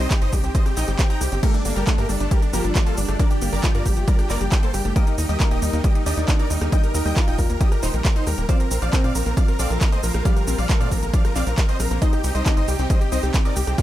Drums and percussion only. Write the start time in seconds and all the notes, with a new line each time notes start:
0.11 kick, clap, closed hi-hat, shaker
0.22 closed hi-hat, shaker
0.33 kick, cross-stick, open hi-hat, shaker
0.44 closed hi-hat, shaker
0.55 kick, closed hi-hat, shaker
0.66 cross-stick, closed hi-hat, shaker
0.77 clap, open hi-hat, shaker
0.88 closed hi-hat, shaker
0.99 kick, clap, closed hi-hat, shaker
1.10 closed hi-hat, shaker
1.21 cross-stick, open hi-hat, shaker
1.32 closed hi-hat, shaker
1.43 kick, closed hi-hat, crash, shaker
1.54 closed hi-hat, shaker
1.65 open hi-hat, shaker
1.76 closed hi-hat, shaker
1.87 kick, clap, closed hi-hat, shaker
1.98 closed hi-hat, shaker
2.09 open hi-hat, shaker
2.20 closed hi-hat, shaker
2.31 kick, closed hi-hat, shaker
2.42 closed hi-hat, shaker
2.53 open hi-hat, shaker
2.64 closed hi-hat, shaker
2.75 kick, clap, closed hi-hat, shaker
2.86 closed hi-hat, shaker
2.97 open hi-hat, shaker
3.08 cross-stick, closed hi-hat, shaker
3.19 kick, closed hi-hat, shaker
3.31 closed hi-hat, shaker
3.42 open hi-hat, shaker
3.53 open hi-hat, shaker
3.64 kick, clap, closed hi-hat, shaker
3.75 closed hi-hat, shaker
3.86 kick, open hi-hat, shaker
3.97 closed hi-hat, shaker
4.08 kick, closed hi-hat, shaker
4.19 cross-stick, closed hi-hat, shaker
4.30 clap, open hi-hat, shaker
4.41 closed hi-hat, shaker
4.52 kick, clap, closed hi-hat, shaker
4.63 closed hi-hat, shaker
4.74 cross-stick, open hi-hat, shaker
4.85 closed hi-hat, shaker
4.96 kick, closed hi-hat, shaker
5.07 closed hi-hat, shaker
5.18 open hi-hat, shaker
5.29 closed hi-hat, shaker
5.40 kick, clap, closed hi-hat, shaker
5.51 closed hi-hat, shaker
5.62 open hi-hat, shaker
5.73 closed hi-hat, shaker
5.84 kick, closed hi-hat, shaker
5.95 closed hi-hat, shaker
6.06 open hi-hat, shaker
6.17 closed hi-hat, shaker
6.28 kick, clap, closed hi-hat, shaker
6.39 closed hi-hat, shaker
6.50 open hi-hat, shaker
6.61 cross-stick, closed hi-hat, shaker
6.72 kick, closed hi-hat, shaker
6.83 closed hi-hat, shaker
6.95 open hi-hat, shaker
7.06 open hi-hat, shaker
7.17 kick, clap, closed hi-hat, shaker
7.28 closed hi-hat, shaker
7.39 kick, open hi-hat, shaker
7.50 closed hi-hat, shaker
7.61 kick, closed hi-hat, shaker
7.72 cross-stick, closed hi-hat, shaker
7.83 clap, open hi-hat, shaker
7.94 closed hi-hat, shaker
8.05 kick, clap, closed hi-hat, shaker
8.16 closed hi-hat, shaker
8.27 cross-stick, open hi-hat, shaker
8.38 closed hi-hat, shaker
8.49 kick, closed hi-hat, shaker
8.60 closed hi-hat, shaker
8.71 open hi-hat, shaker
8.82 closed hi-hat, shaker
8.93 kick, clap, closed hi-hat, shaker
9.04 closed hi-hat, shaker
9.15 open hi-hat, shaker
9.26 closed hi-hat, shaker
9.37 kick, closed hi-hat, shaker
9.48 closed hi-hat, shaker
9.59 open hi-hat, shaker
9.70 closed hi-hat, shaker
9.81 kick, clap, closed hi-hat, shaker
9.92 closed hi-hat, shaker
10.03 open hi-hat, shaker
10.14 cross-stick, closed hi-hat, shaker
10.25 kick, closed hi-hat, shaker
10.36 closed hi-hat, shaker
10.47 open hi-hat, shaker
10.59 open hi-hat, shaker
10.69 kick, clap, closed hi-hat, shaker
10.81 closed hi-hat, shaker
10.92 kick, open hi-hat, shaker
11.03 closed hi-hat, shaker
11.14 kick, closed hi-hat, shaker
11.25 cross-stick, closed hi-hat, shaker
11.36 clap, open hi-hat, shaker
11.47 closed hi-hat, shaker
11.58 kick, clap, closed hi-hat, shaker
11.69 closed hi-hat, shaker
11.80 cross-stick, open hi-hat, shaker
11.91 closed hi-hat, shaker
12.02 kick, closed hi-hat, shaker
12.13 closed hi-hat, shaker
12.24 open hi-hat, shaker
12.35 closed hi-hat, shaker
12.46 kick, clap, closed hi-hat, shaker
12.57 closed hi-hat, shaker
12.68 open hi-hat, shaker
12.79 closed hi-hat, shaker
12.90 kick, closed hi-hat, shaker
13.01 closed hi-hat, shaker
13.12 open hi-hat, shaker
13.23 closed hi-hat, shaker
13.34 kick, clap, closed hi-hat, shaker
13.45 closed hi-hat, shaker
13.56 open hi-hat, shaker
13.67 cross-stick, closed hi-hat, shaker
13.78 kick, closed hi-hat, shaker